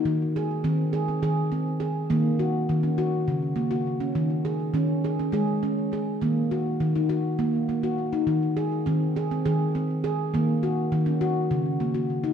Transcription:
X:1
M:7/8
L:1/16
Q:1/4=102
K:Abmix
V:1 name="Handpan"
E z A2 C2 A C A2 C2 A2 | B,2 G2 z D G2 z2 B, G2 D- | D z A2 D2 A D A2 D2 A2 | B,2 G2 z E G2 z2 B, G2 E- |
E z A2 C2 A C A2 C2 A2 | B,2 G2 z D G2 z2 B, G2 E |]
V:2 name="Handpan" clef=bass
E,4 E,4 E,6 | E,4 E,4 D,6 | E,4 E,4 A,6 | E,4 E,4 B,6 |
E,4 E,4 E,6 | E,4 E,4 D,6 |]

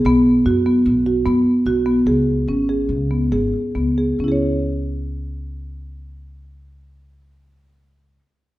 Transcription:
X:1
M:5/4
L:1/8
Q:1/4=135
K:C#m
V:1 name="Marimba"
B,2 F B,2 F B,2 F B, | G2 C G2 B, G2 B, G | [CEGc]8- [CEGc]2- | [CEGc]8- [CEGc]2 |]
V:2 name="Upright bass" clef=bass
B,,,2 F,,2 B,,,2 F,, z B,,,2 | C,,2 G,,,2 C,,2 G,,, z C,,2 | C,,8- C,,2- | C,,8- C,,2 |]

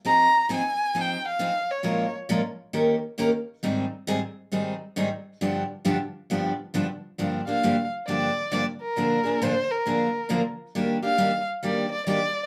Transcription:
X:1
M:4/4
L:1/8
Q:"Swing" 1/4=135
K:Gphr
V:1 name="Violin"
b2 a2 g f2 _d- | _d z6 z | z8 | z8 |
[K:Gm] z f2 z d2 d B- | B2 c B3 z2 | z f2 z d d d2 |]
V:2 name="Steel-string acoustic guitar"
[F,CEA] z [F,CEA] z [F,CEA] z [F,CEA] z | [B,,F,A,_DFB] z [B,,F,A,DFB] z [E,B,DGB] z [E,B,DGB] z | [A,,E,G,CEA] z [A,,E,G,CEA] z [A,,E,G,CEA] z [A,,E,G,CEA] z | [G,,D,F,=B,DG] z [G,,D,F,B,DG] z [G,,D,F,B,DG] z [G,,D,F,B,DG] z |
[K:Gm] [G,,D,F,B,DG] [F,B,DG] [G,,D,F,B,DG] z [G,,D,F,B,DG] z [G,,D,F,B,DG] z | [B,,D,F,B,D_A] [F,B,DA] [B,,D,F,B,DA] z [B,,D,F,B,DA] z [B,,D,F,B,DA] z | [E,G,B,DG] [B,DG] [E,G,B,DG] z [E,G,B,DG] z [E,G,B,DG] z |]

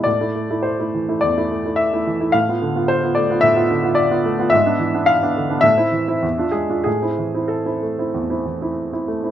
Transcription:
X:1
M:4/4
L:1/16
Q:1/4=106
K:Am
V:1 name="Grand piano"
d4 c4 d4 e4 | f4 c2 d2 e4 d4 | e4 f4 e6 ^G2 | ^G4 A8- A2 z2 |]
V:2 name="Grand piano"
A,, [A,E] A, [A,E]2 [A,E] E, [A,E] E,, [A,E] A, [A,E]2 [A,E] E, [A,E] | A,, [B,F] D, [B,F]2 [B,F] A, [B,F] A,, [B,F] D, [B,F]2 [B,F] A, [B,F] | ^G,, [B,D] E, [B,D]2 [B,D] D, [B,D] A,, [CE] E, [CE] E,, [DF] ^G, [DF] | A,, [CE] E, [CE]2 [CE] A, [CE] E,, [CE] E, [CE]2 [CE] A, [CE] |]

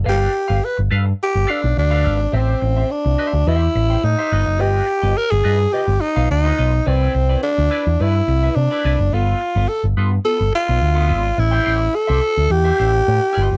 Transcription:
X:1
M:4/4
L:1/16
Q:1/4=106
K:Am
V:1 name="Clean electric guitar"
[ABf]2 z [ABf] z2 [ABf] z3 [ABf] z2 [ABf] [ABf] z | [Gce]2 z [Gce] z2 [Gce] z [Gce] z2 [Gcg] z [Gce] [FB_e] z | [FB_e]2 z [FBe] z2 [FBe] z [FBe] z2 [FBf] z [FBe] [FBe] z | [EBd]2 z [EBd] z2 [EBd] z [EBd] z2 [EBe] z [EBd] [EBd] z |
[B,FA]2 z [B,FA] z2 [B,FA] z [B,FA] z2 [B,FB] z [B,FA] [B,FA] z | z [Gcg] [Gcg] z2 [Gce] z3 [Gce] [Gce] z3 [FB_e] z |]
V:2 name="Tenor saxophone"
G4 B z3 G2 D2 D4 | C4 D4 E4 ^D4 | G4 _B ^G3 =G2 _E2 E4 | C4 D4 E4 D4 |
F4 A z3 A2 F6 | E4 A4 G8 |]
V:3 name="Picked electric bass" clef=bass
G,,,2 z G,,, z G,,, G,,2 z G,,, z B,,, D,,2 ^G,,,2 | A,,,2 A,,,2 z C,, z D,, E,,2 A,,,2 A,, z G,,, ^F,,, | G,,,2 z G,,, z G,,, G,,2 z G,,, z B,,, D,,2 B,,,2 | C,,2 C,,2 z D,, z E,, G,,2 C,,2 C, z C,, ^F,,, |
G,,,2 z G,,, z G,,, G,,2 z G,,, z B,,, D,,2 ^G,,,2 | A,,,2 A,,,2 z C,, z D,, E,,2 A,,,2 A,, z G,,, ^F,,, |]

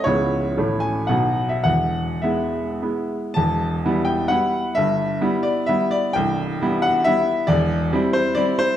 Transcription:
X:1
M:3/4
L:1/16
Q:1/4=127
K:E
V:1 name="Grand piano"
c6 g2 f3 e | f4 e6 z2 | [K:Em] a6 g2 f4 | e6 d2 e2 d2 |
g6 f2 e4 | d6 c2 d2 c2 |]
V:2 name="Grand piano" clef=bass
[C,,,C,,G,B,E]4 [A,,,A,,A,CE]4 [B,,,B,,F,B,D]4 | [E,,,E,,]4 [G,B,E]4 [G,B,E]4 | [K:Em] [E,,,E,,]4 [G,B,E]4 [G,B,E]4 | [G,,,G,,]4 [G,B,E]4 [G,B,E]4 |
[C,,,C,,]4 [G,B,E]4 [G,B,E]4 | [E,,,E,,]4 [G,CE]4 [G,CE]4 |]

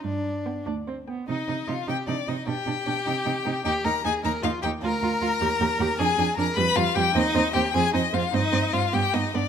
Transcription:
X:1
M:6/8
L:1/8
Q:3/8=102
K:Cm
V:1 name="Violin"
z2 g z2 g | e2 f g d e | g6 | g b a b f g |
b6 | a2 b =b f g | e2 g a e f | e2 f g e d |]
V:2 name="Violin"
D3 z3 | E2 F G D E | G6 | G B A B F G |
B6 | A2 B =B F G | E2 G A E F | E2 F G E D |]
V:3 name="Viola"
z2 =B, D C B, | E E E E E E | D D D E E E | E E E E E E |
F F F G G G | D D D G, G, G, | C C C C C C | C C C =B, B, B, |]
V:4 name="Cello" clef=bass
G,,3 D,,3 | C, C, C, C, C, C, | =B,, B,, B,, C, C, C, | E,, E,, E,, E,, E,, E,, |
D,, D,, D,, E,, E,, E,, | F,, F,, F,, F,, F,, F,, | E,, E,, E,, F,, F,, F,, | G,, G,, G,, G,, G,, G,, |]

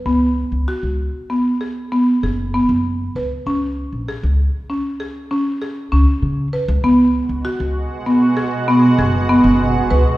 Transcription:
X:1
M:11/8
L:1/16
Q:1/4=98
K:Abdor
V:1 name="Marimba"
C4 G4 C2 A2 C2 A2 C4 c2 | D4 A4 D2 A2 D2 A2 D4 c2 | C4 G4 C2 A2 C2 A2 C4 c2 |]
V:2 name="Ambient pad" clef=bass
z16 z6 | z16 z6 | [C,A,G]16- [C,A,G]6 |]
V:3 name="Upright bass" clef=bass
D,,3 D,, z D,,2 z6 z G,,,3 G,,,3 D,, z | D,,3 B,,, z D,,2 z8 z D,, z D,2 z D,, | D,,3 D,, z D,,2 z6 z G,,,3 G,,,3 D,, z |]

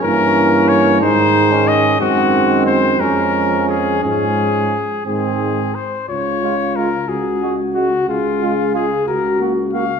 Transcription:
X:1
M:6/8
L:1/16
Q:3/8=60
K:Db
V:1 name="Trumpet"
B4 d2 c4 e2 | G4 c2 B4 A2 | A6 A4 c2 | d4 B2 A4 G2 |
F4 A2 B2 z2 f2 |]
V:2 name="Flugelhorn"
D6 E3 D3 | C6 D6 | D4 z2 C4 z2 | z2 F2 F2 z2 G2 G2 |
z2 F2 F2 z2 G2 G2 |]
V:3 name="French horn"
B,6 A,6 | A,6 A,6 | A,4 z2 A,4 z2 | F6 G6 |
A6 G6 |]
V:4 name="Euphonium" clef=bass
=E,6 _E,6 | E,6 F,6 | F,4 z2 E,4 z2 | z2 A,2 A,2 z2 A,2 A,2 |
z2 A,2 A,2 z2 B,2 B,2 |]
V:5 name="Tuba" clef=bass
=G,,6 A,,6 | G,,6 F,,6 | A,,4 z2 A,,4 z2 | D,,6 D,,6 |
D,,6 D,,6 |]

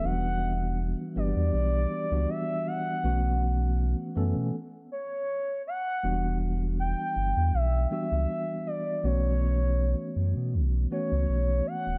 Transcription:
X:1
M:4/4
L:1/16
Q:"Swing 16ths" 1/4=80
K:Edor
V:1 name="Soft synth lead"
f4 z2 d6 e2 f2- | f4 z6 c4 f2- | f2 z2 g4 e2 e4 d2 | c8 z2 c4 f2 |]
V:2 name="Tine electric piano"
[E,F,G,B,DF]4 z2 [E,G,B,DG]3 z2 [E,G,B,DF]3 z2 | [E,A,B,CF]4 z2 [E,A,B,CA]2 z8 | [E,G,B,DF]4- [E,G,B,DF] z4 z [E,G,B,DF]4 z2 | [E,A,B,CF]4- [E,A,B,CF] z4 z [E,A,B,CF]4 z2 |]
V:3 name="Sub bass" clef=bass
E,,,4- E,,, z G,,, E,, B,,,2 z C,, z4 | B,,,4- B,,, z F,, B,, z8 | E,,,4- E,,, z G,,, E,, B,,,2 z C,, z4 | B,,,4- B,,, z F,, B,, B,,,2 z C,, B,,,2 z D,,, |]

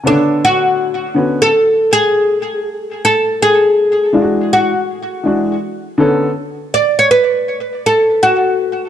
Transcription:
X:1
M:4/4
L:1/16
Q:"Swing 16ths" 1/4=81
K:Bdor
V:1 name="Oud"
D2 F4- F A3 G6 | A2 G6 F6 z2 | z4 d c B4 A2 F4 |]
V:2 name="Upright piano"
[C,D,B,Ac]6 [D,B,CF]2 z8 | z6 [E,G,D^EF]2 z4 [=E,G,DF]2 z2 | [D,B,CA]2 z12 z2 |]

